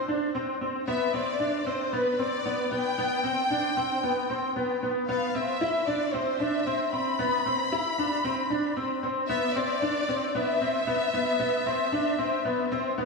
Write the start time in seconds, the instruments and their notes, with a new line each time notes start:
Already playing: violin section C5
0.08 grand piano D4
0.35 grand piano C4
0.61 grand piano C4
0.88 grand piano B3, violin section E5
1.14 grand piano C4, violin section D5
1.40 grand piano D4
1.66 grand piano C4, violin section C5
1.93 grand piano B3, violin section B4
2.19 grand piano C4, violin section D5
2.45 grand piano B3
2.71 grand piano B3, violin section G5
2.98 grand piano B3
3.24 grand piano C4
3.50 grand piano D4
3.77 grand piano C4
4.03 grand piano B3
4.30 grand piano C4
4.56 grand piano B3
4.83 grand piano B3
5.09 grand piano B3, violin section F5
5.35 grand piano C4, violin section E5
5.61 grand piano E4
5.87 grand piano D4, violin section D5
6.14 grand piano C4, violin section C5
6.39 grand piano D4, violin section E5
6.67 grand piano C4
6.92 grand piano C4, violin section B5
7.19 grand piano B3
7.46 grand piano C4
7.72 grand piano E4
7.98 grand piano D4
8.24 grand piano C4
8.50 grand piano D4
8.77 grand piano C4
9.03 grand piano C4
9.29 grand piano B3, violin section E5
9.55 grand piano C4, violin section D5
9.82 grand piano D4
10.09 grand piano C4
10.34 grand piano B3, violin section E5
10.61 grand piano C4
10.87 grand piano B3
11.14 grand piano B3
11.40 grand piano B3
11.66 grand piano C4
11.92 grand piano D4
12.19 grand piano C4
12.45 grand piano B3
12.72 grand piano C4
12.98 grand piano B3